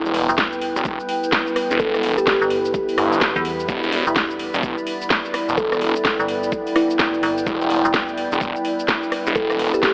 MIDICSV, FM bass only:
0, 0, Header, 1, 2, 480
1, 0, Start_track
1, 0, Key_signature, 1, "minor"
1, 0, Tempo, 472441
1, 1825, Time_signature, 4, 2, 24, 8
1, 10095, End_track
2, 0, Start_track
2, 0, Title_t, "FM bass"
2, 0, Program_c, 0, 39
2, 293, Note_on_c, 0, 28, 98
2, 750, Note_off_c, 0, 28, 0
2, 2453, Note_on_c, 0, 31, 97
2, 2770, Note_off_c, 0, 31, 0
2, 3413, Note_on_c, 0, 40, 96
2, 3730, Note_off_c, 0, 40, 0
2, 4134, Note_on_c, 0, 28, 97
2, 4590, Note_off_c, 0, 28, 0
2, 6294, Note_on_c, 0, 31, 94
2, 6610, Note_off_c, 0, 31, 0
2, 7104, Note_on_c, 0, 28, 98
2, 7330, Note_off_c, 0, 28, 0
2, 7345, Note_on_c, 0, 31, 96
2, 7570, Note_off_c, 0, 31, 0
2, 7973, Note_on_c, 0, 28, 100
2, 8430, Note_off_c, 0, 28, 0
2, 10095, End_track
0, 0, End_of_file